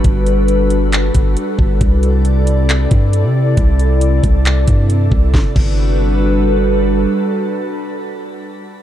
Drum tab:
CC |--------|--------|--------|-x------|
HH |xxxxxxx-|xxxxxxx-|xxxxxxx-|--------|
CP |----x---|----x---|----x---|--------|
SD |--------|--------|--------|o-------|
BD |o----o-o|o----o--|o--o-o-o|oo------|

CC |--------|
HH |--------|
CP |--------|
SD |--------|
BD |--------|